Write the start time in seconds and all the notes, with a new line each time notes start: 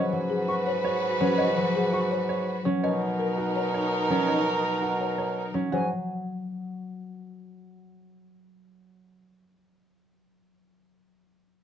Already playing: G#2 F#3 F#4 B4 C#5 D#5
0.12 F#3
0.30 G#4
0.48 F#4 C#6
0.67 C#5
0.85 C#5
1.20 F#3 C#4 C#5
1.38 C#5 D#5
1.57 F#3
1.75 G#4
1.93 F#4 C#6
2.11 C#5
2.29 C#5
2.65 F#3 C#4 C#5
2.83 B2 D#4 A#4 C#5 D#5
3.20 A#4
3.38 F#4
3.56 C#5
3.74 C#5
4.10 F#3 C#4 C#5
4.28 C#5 D#5
4.64 A#4
4.82 F#4
5.01 C#5
5.18 C#5
5.54 F#3 C#4 C#5
5.72 G#2 F#3 F#4 C#5 G#5